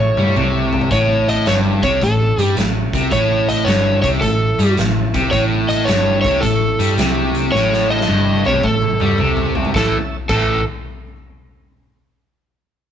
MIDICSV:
0, 0, Header, 1, 6, 480
1, 0, Start_track
1, 0, Tempo, 551978
1, 790, Time_signature, 4, 2, 24, 8
1, 11227, End_track
2, 0, Start_track
2, 0, Title_t, "Electric slide guitar"
2, 0, Program_c, 0, 29
2, 0, Note_on_c, 0, 73, 78
2, 590, Note_off_c, 0, 73, 0
2, 800, Note_on_c, 0, 73, 81
2, 1118, Note_on_c, 0, 75, 78
2, 1124, Note_off_c, 0, 73, 0
2, 1278, Note_off_c, 0, 75, 0
2, 1279, Note_on_c, 0, 73, 88
2, 1364, Note_off_c, 0, 73, 0
2, 1598, Note_on_c, 0, 73, 83
2, 1758, Note_off_c, 0, 73, 0
2, 1768, Note_on_c, 0, 69, 70
2, 2205, Note_off_c, 0, 69, 0
2, 2716, Note_on_c, 0, 73, 89
2, 3032, Note_on_c, 0, 75, 91
2, 3042, Note_off_c, 0, 73, 0
2, 3171, Note_on_c, 0, 73, 81
2, 3194, Note_off_c, 0, 75, 0
2, 3488, Note_off_c, 0, 73, 0
2, 3498, Note_on_c, 0, 73, 84
2, 3542, Note_off_c, 0, 73, 0
2, 3660, Note_on_c, 0, 69, 70
2, 4111, Note_off_c, 0, 69, 0
2, 4619, Note_on_c, 0, 73, 84
2, 4707, Note_off_c, 0, 73, 0
2, 4945, Note_on_c, 0, 75, 85
2, 5086, Note_on_c, 0, 73, 92
2, 5112, Note_off_c, 0, 75, 0
2, 5394, Note_off_c, 0, 73, 0
2, 5405, Note_on_c, 0, 73, 86
2, 5569, Note_on_c, 0, 69, 72
2, 5582, Note_off_c, 0, 73, 0
2, 6025, Note_off_c, 0, 69, 0
2, 6537, Note_on_c, 0, 73, 86
2, 6874, Note_off_c, 0, 73, 0
2, 6874, Note_on_c, 0, 75, 91
2, 7359, Note_on_c, 0, 73, 90
2, 7366, Note_off_c, 0, 75, 0
2, 7514, Note_on_c, 0, 69, 75
2, 7519, Note_off_c, 0, 73, 0
2, 8278, Note_off_c, 0, 69, 0
2, 8489, Note_on_c, 0, 69, 72
2, 8659, Note_off_c, 0, 69, 0
2, 8952, Note_on_c, 0, 69, 74
2, 9249, Note_off_c, 0, 69, 0
2, 11227, End_track
3, 0, Start_track
3, 0, Title_t, "Tonewheel organ"
3, 0, Program_c, 1, 16
3, 0, Note_on_c, 1, 57, 64
3, 0, Note_on_c, 1, 64, 68
3, 0, Note_on_c, 1, 73, 64
3, 761, Note_off_c, 1, 57, 0
3, 761, Note_off_c, 1, 73, 0
3, 763, Note_off_c, 1, 64, 0
3, 786, Note_on_c, 1, 64, 68
3, 790, Note_on_c, 1, 61, 66
3, 796, Note_on_c, 1, 57, 70
3, 2689, Note_off_c, 1, 57, 0
3, 2689, Note_off_c, 1, 61, 0
3, 2691, Note_off_c, 1, 64, 0
3, 2700, Note_on_c, 1, 57, 68
3, 2703, Note_on_c, 1, 61, 65
3, 2712, Note_on_c, 1, 52, 67
3, 2712, Note_on_c, 1, 64, 69
3, 4605, Note_off_c, 1, 57, 0
3, 4607, Note_off_c, 1, 61, 0
3, 4611, Note_off_c, 1, 52, 0
3, 4611, Note_off_c, 1, 64, 0
3, 4645, Note_on_c, 1, 52, 63
3, 4645, Note_on_c, 1, 57, 69
3, 4645, Note_on_c, 1, 64, 69
3, 4646, Note_on_c, 1, 73, 69
3, 6516, Note_off_c, 1, 64, 0
3, 6520, Note_off_c, 1, 73, 0
3, 6526, Note_off_c, 1, 57, 0
3, 6526, Note_on_c, 1, 64, 70
3, 6531, Note_on_c, 1, 73, 67
3, 6536, Note_on_c, 1, 57, 73
3, 6539, Note_off_c, 1, 52, 0
3, 8441, Note_off_c, 1, 73, 0
3, 8443, Note_off_c, 1, 64, 0
3, 8444, Note_off_c, 1, 57, 0
3, 8451, Note_on_c, 1, 76, 65
3, 8452, Note_on_c, 1, 69, 65
3, 8454, Note_on_c, 1, 61, 65
3, 8456, Note_on_c, 1, 64, 70
3, 8841, Note_off_c, 1, 69, 0
3, 8841, Note_off_c, 1, 76, 0
3, 8842, Note_off_c, 1, 61, 0
3, 8843, Note_off_c, 1, 64, 0
3, 11227, End_track
4, 0, Start_track
4, 0, Title_t, "Distorted electric guitar"
4, 0, Program_c, 2, 30
4, 151, Note_on_c, 2, 55, 86
4, 306, Note_off_c, 2, 55, 0
4, 309, Note_on_c, 2, 48, 90
4, 784, Note_off_c, 2, 48, 0
4, 795, Note_on_c, 2, 45, 94
4, 1267, Note_off_c, 2, 45, 0
4, 1278, Note_on_c, 2, 43, 86
4, 1584, Note_off_c, 2, 43, 0
4, 1596, Note_on_c, 2, 48, 85
4, 1747, Note_off_c, 2, 48, 0
4, 1756, Note_on_c, 2, 45, 62
4, 2009, Note_off_c, 2, 45, 0
4, 2084, Note_on_c, 2, 55, 83
4, 2231, Note_off_c, 2, 55, 0
4, 2240, Note_on_c, 2, 45, 61
4, 2491, Note_off_c, 2, 45, 0
4, 2564, Note_on_c, 2, 48, 81
4, 2711, Note_off_c, 2, 48, 0
4, 2718, Note_on_c, 2, 45, 97
4, 3188, Note_off_c, 2, 45, 0
4, 3192, Note_on_c, 2, 43, 95
4, 3501, Note_off_c, 2, 43, 0
4, 3511, Note_on_c, 2, 48, 84
4, 3664, Note_off_c, 2, 48, 0
4, 3681, Note_on_c, 2, 45, 63
4, 3931, Note_off_c, 2, 45, 0
4, 3989, Note_on_c, 2, 55, 90
4, 4144, Note_off_c, 2, 55, 0
4, 4147, Note_on_c, 2, 45, 58
4, 4404, Note_off_c, 2, 45, 0
4, 4469, Note_on_c, 2, 48, 94
4, 4622, Note_off_c, 2, 48, 0
4, 4625, Note_on_c, 2, 45, 90
4, 5102, Note_off_c, 2, 45, 0
4, 5105, Note_on_c, 2, 43, 96
4, 5418, Note_off_c, 2, 43, 0
4, 5437, Note_on_c, 2, 48, 89
4, 5586, Note_off_c, 2, 48, 0
4, 5590, Note_on_c, 2, 45, 64
4, 5846, Note_off_c, 2, 45, 0
4, 5906, Note_on_c, 2, 55, 88
4, 6062, Note_off_c, 2, 55, 0
4, 6071, Note_on_c, 2, 48, 86
4, 6542, Note_off_c, 2, 48, 0
4, 6546, Note_on_c, 2, 45, 101
4, 7023, Note_off_c, 2, 45, 0
4, 7026, Note_on_c, 2, 43, 97
4, 7339, Note_off_c, 2, 43, 0
4, 7358, Note_on_c, 2, 48, 82
4, 7503, Note_off_c, 2, 48, 0
4, 7506, Note_on_c, 2, 45, 67
4, 7764, Note_off_c, 2, 45, 0
4, 7835, Note_on_c, 2, 55, 88
4, 7987, Note_off_c, 2, 55, 0
4, 7993, Note_on_c, 2, 48, 87
4, 8466, Note_off_c, 2, 48, 0
4, 8470, Note_on_c, 2, 45, 87
4, 8480, Note_on_c, 2, 52, 90
4, 8485, Note_on_c, 2, 57, 91
4, 8662, Note_off_c, 2, 45, 0
4, 8667, Note_off_c, 2, 52, 0
4, 8670, Note_off_c, 2, 57, 0
4, 8958, Note_on_c, 2, 45, 94
4, 8963, Note_on_c, 2, 52, 95
4, 8969, Note_on_c, 2, 57, 94
4, 9210, Note_off_c, 2, 45, 0
4, 9213, Note_off_c, 2, 52, 0
4, 9215, Note_off_c, 2, 57, 0
4, 11227, End_track
5, 0, Start_track
5, 0, Title_t, "Picked electric bass"
5, 0, Program_c, 3, 34
5, 0, Note_on_c, 3, 33, 72
5, 131, Note_off_c, 3, 33, 0
5, 152, Note_on_c, 3, 43, 78
5, 300, Note_off_c, 3, 43, 0
5, 315, Note_on_c, 3, 36, 82
5, 759, Note_off_c, 3, 36, 0
5, 793, Note_on_c, 3, 33, 82
5, 1237, Note_off_c, 3, 33, 0
5, 1279, Note_on_c, 3, 31, 80
5, 1572, Note_off_c, 3, 31, 0
5, 1593, Note_on_c, 3, 36, 82
5, 1740, Note_off_c, 3, 36, 0
5, 1749, Note_on_c, 3, 33, 73
5, 2047, Note_off_c, 3, 33, 0
5, 2066, Note_on_c, 3, 43, 81
5, 2216, Note_off_c, 3, 43, 0
5, 2223, Note_on_c, 3, 33, 69
5, 2524, Note_off_c, 3, 33, 0
5, 2552, Note_on_c, 3, 36, 80
5, 2699, Note_off_c, 3, 36, 0
5, 2714, Note_on_c, 3, 33, 83
5, 3158, Note_off_c, 3, 33, 0
5, 3185, Note_on_c, 3, 31, 78
5, 3485, Note_off_c, 3, 31, 0
5, 3512, Note_on_c, 3, 36, 91
5, 3659, Note_off_c, 3, 36, 0
5, 3673, Note_on_c, 3, 33, 71
5, 3969, Note_off_c, 3, 33, 0
5, 3990, Note_on_c, 3, 43, 81
5, 4138, Note_off_c, 3, 43, 0
5, 4154, Note_on_c, 3, 33, 66
5, 4449, Note_off_c, 3, 33, 0
5, 4475, Note_on_c, 3, 36, 83
5, 4621, Note_off_c, 3, 36, 0
5, 4634, Note_on_c, 3, 33, 81
5, 5078, Note_off_c, 3, 33, 0
5, 5121, Note_on_c, 3, 31, 86
5, 5413, Note_off_c, 3, 31, 0
5, 5434, Note_on_c, 3, 36, 89
5, 5580, Note_off_c, 3, 36, 0
5, 5592, Note_on_c, 3, 33, 74
5, 5889, Note_off_c, 3, 33, 0
5, 5909, Note_on_c, 3, 43, 78
5, 6058, Note_off_c, 3, 43, 0
5, 6069, Note_on_c, 3, 36, 82
5, 6515, Note_off_c, 3, 36, 0
5, 6554, Note_on_c, 3, 33, 85
5, 6998, Note_off_c, 3, 33, 0
5, 7033, Note_on_c, 3, 31, 75
5, 7329, Note_off_c, 3, 31, 0
5, 7359, Note_on_c, 3, 36, 84
5, 7503, Note_off_c, 3, 36, 0
5, 7510, Note_on_c, 3, 33, 70
5, 7808, Note_off_c, 3, 33, 0
5, 7847, Note_on_c, 3, 43, 77
5, 7987, Note_off_c, 3, 43, 0
5, 8001, Note_on_c, 3, 36, 76
5, 8442, Note_off_c, 3, 36, 0
5, 8468, Note_on_c, 3, 33, 84
5, 8647, Note_off_c, 3, 33, 0
5, 8950, Note_on_c, 3, 33, 83
5, 9248, Note_off_c, 3, 33, 0
5, 11227, End_track
6, 0, Start_track
6, 0, Title_t, "Drums"
6, 150, Note_on_c, 9, 48, 60
6, 231, Note_off_c, 9, 48, 0
6, 231, Note_on_c, 9, 48, 57
6, 315, Note_on_c, 9, 47, 70
6, 318, Note_off_c, 9, 48, 0
6, 402, Note_off_c, 9, 47, 0
6, 631, Note_on_c, 9, 43, 78
6, 708, Note_off_c, 9, 43, 0
6, 708, Note_on_c, 9, 43, 69
6, 791, Note_on_c, 9, 36, 93
6, 793, Note_on_c, 9, 42, 70
6, 795, Note_off_c, 9, 43, 0
6, 878, Note_off_c, 9, 36, 0
6, 880, Note_off_c, 9, 42, 0
6, 1118, Note_on_c, 9, 42, 56
6, 1205, Note_off_c, 9, 42, 0
6, 1270, Note_on_c, 9, 42, 69
6, 1285, Note_on_c, 9, 38, 96
6, 1357, Note_off_c, 9, 42, 0
6, 1372, Note_off_c, 9, 38, 0
6, 1593, Note_on_c, 9, 36, 95
6, 1597, Note_on_c, 9, 42, 61
6, 1680, Note_off_c, 9, 36, 0
6, 1684, Note_off_c, 9, 42, 0
6, 1752, Note_on_c, 9, 36, 78
6, 1756, Note_on_c, 9, 42, 77
6, 1839, Note_off_c, 9, 36, 0
6, 1843, Note_off_c, 9, 42, 0
6, 2073, Note_on_c, 9, 42, 61
6, 2160, Note_off_c, 9, 42, 0
6, 2233, Note_on_c, 9, 42, 77
6, 2248, Note_on_c, 9, 38, 92
6, 2320, Note_off_c, 9, 42, 0
6, 2335, Note_off_c, 9, 38, 0
6, 2552, Note_on_c, 9, 36, 91
6, 2557, Note_on_c, 9, 42, 61
6, 2639, Note_off_c, 9, 36, 0
6, 2644, Note_off_c, 9, 42, 0
6, 2709, Note_on_c, 9, 42, 73
6, 2710, Note_on_c, 9, 36, 91
6, 2796, Note_off_c, 9, 42, 0
6, 2797, Note_off_c, 9, 36, 0
6, 3034, Note_on_c, 9, 42, 52
6, 3121, Note_off_c, 9, 42, 0
6, 3193, Note_on_c, 9, 42, 66
6, 3207, Note_on_c, 9, 38, 84
6, 3280, Note_off_c, 9, 42, 0
6, 3294, Note_off_c, 9, 38, 0
6, 3510, Note_on_c, 9, 42, 56
6, 3511, Note_on_c, 9, 36, 91
6, 3597, Note_off_c, 9, 42, 0
6, 3598, Note_off_c, 9, 36, 0
6, 3670, Note_on_c, 9, 36, 78
6, 3670, Note_on_c, 9, 42, 72
6, 3757, Note_off_c, 9, 36, 0
6, 3757, Note_off_c, 9, 42, 0
6, 3992, Note_on_c, 9, 42, 56
6, 4079, Note_off_c, 9, 42, 0
6, 4151, Note_on_c, 9, 42, 70
6, 4165, Note_on_c, 9, 38, 101
6, 4237, Note_off_c, 9, 42, 0
6, 4252, Note_off_c, 9, 38, 0
6, 4473, Note_on_c, 9, 36, 98
6, 4475, Note_on_c, 9, 42, 59
6, 4560, Note_off_c, 9, 36, 0
6, 4562, Note_off_c, 9, 42, 0
6, 4632, Note_on_c, 9, 36, 91
6, 4632, Note_on_c, 9, 42, 70
6, 4719, Note_off_c, 9, 36, 0
6, 4719, Note_off_c, 9, 42, 0
6, 4950, Note_on_c, 9, 42, 54
6, 5037, Note_off_c, 9, 42, 0
6, 5110, Note_on_c, 9, 42, 71
6, 5125, Note_on_c, 9, 38, 93
6, 5197, Note_off_c, 9, 42, 0
6, 5212, Note_off_c, 9, 38, 0
6, 5431, Note_on_c, 9, 36, 97
6, 5434, Note_on_c, 9, 42, 61
6, 5518, Note_off_c, 9, 36, 0
6, 5521, Note_off_c, 9, 42, 0
6, 5588, Note_on_c, 9, 42, 75
6, 5590, Note_on_c, 9, 36, 73
6, 5675, Note_off_c, 9, 42, 0
6, 5677, Note_off_c, 9, 36, 0
6, 5911, Note_on_c, 9, 42, 60
6, 5998, Note_off_c, 9, 42, 0
6, 6068, Note_on_c, 9, 42, 79
6, 6083, Note_on_c, 9, 38, 100
6, 6155, Note_off_c, 9, 42, 0
6, 6170, Note_off_c, 9, 38, 0
6, 6389, Note_on_c, 9, 42, 61
6, 6475, Note_off_c, 9, 42, 0
6, 6566, Note_on_c, 9, 38, 48
6, 6653, Note_off_c, 9, 38, 0
6, 6724, Note_on_c, 9, 38, 46
6, 6811, Note_off_c, 9, 38, 0
6, 6966, Note_on_c, 9, 38, 55
6, 7028, Note_on_c, 9, 48, 55
6, 7053, Note_off_c, 9, 38, 0
6, 7115, Note_off_c, 9, 48, 0
6, 7351, Note_on_c, 9, 48, 65
6, 7431, Note_on_c, 9, 47, 61
6, 7438, Note_off_c, 9, 48, 0
6, 7509, Note_on_c, 9, 36, 86
6, 7518, Note_off_c, 9, 47, 0
6, 7596, Note_off_c, 9, 36, 0
6, 7670, Note_on_c, 9, 47, 56
6, 7757, Note_off_c, 9, 47, 0
6, 7826, Note_on_c, 9, 45, 78
6, 7913, Note_off_c, 9, 45, 0
6, 7986, Note_on_c, 9, 45, 75
6, 8073, Note_off_c, 9, 45, 0
6, 8147, Note_on_c, 9, 43, 68
6, 8234, Note_off_c, 9, 43, 0
6, 8308, Note_on_c, 9, 43, 82
6, 8391, Note_off_c, 9, 43, 0
6, 8391, Note_on_c, 9, 43, 71
6, 8471, Note_on_c, 9, 36, 96
6, 8478, Note_off_c, 9, 43, 0
6, 8485, Note_on_c, 9, 38, 83
6, 8558, Note_off_c, 9, 36, 0
6, 8572, Note_off_c, 9, 38, 0
6, 8949, Note_on_c, 9, 49, 74
6, 8951, Note_on_c, 9, 36, 86
6, 9036, Note_off_c, 9, 49, 0
6, 9037, Note_off_c, 9, 36, 0
6, 11227, End_track
0, 0, End_of_file